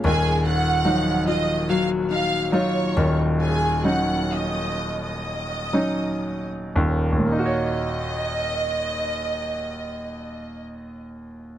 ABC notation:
X:1
M:4/4
L:1/16
Q:1/4=62
K:Ebm
V:1 name="Violin section"
[Aa]2 [gg']4 [ee']2 [ff']2 [ff']2 [dd']3 z | [Aa]2 [gg']2 [ee']3 [ee']6 z3 | e16 |]
V:2 name="Nylon-string guitar"
E,2 F2 E2 F2 G,2 E2 F2 E,2 | z16 | z16 |]
V:3 name="Grand piano" clef=bass
[E,,,E,,]4 [F,G,E]4 z4 [G,EF]2 [E,,,E,,]2- | [E,,,E,,]2 [G,DE]4 z4 [G,DE]4 [E,,,E,,]2 | [E,,B,,B,EGd]16 |]